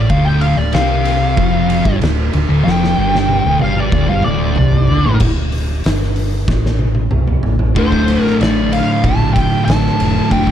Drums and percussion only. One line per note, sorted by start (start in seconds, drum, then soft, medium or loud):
0.10 kick loud
0.10 ride loud
0.41 ride medium
0.73 snare loud
0.73 ride loud
1.05 ride medium
1.37 kick loud
1.37 ride loud
1.70 ride medium
1.85 kick loud
2.01 snare loud
2.01 ride loud
2.33 ride medium
2.67 snare medium
2.84 snare medium
3.15 snare medium
3.28 high tom medium
3.59 high tom loud
3.76 mid tom medium
3.92 kick loud
4.07 mid tom medium
4.23 mid tom loud
4.56 mid tom loud
4.72 floor tom medium
4.87 floor tom loud
5.04 floor tom medium
5.20 kick loud
5.20 crash loud
5.52 open hi-hat medium
5.84 snare loud
5.84 open hi-hat medium
6.03 snare soft
6.16 open hi-hat medium
6.48 kick loud
6.48 snare medium
6.66 snare medium
6.79 high tom medium
6.95 high tom medium
7.11 mid tom loud
7.28 mid tom medium
7.43 floor tom loud
7.59 floor tom loud
7.76 kick loud
7.76 ride medium
7.92 kick medium
8.08 ride medium
8.27 snare soft
8.41 snare loud
8.41 ride loud
8.73 ride medium
9.04 kick loud
9.04 ride loud
9.36 kick medium
9.36 ride medium
9.68 snare loud
9.68 ride loud
9.86 snare soft
10.00 ride medium
10.31 kick loud
10.31 ride loud
10.47 kick medium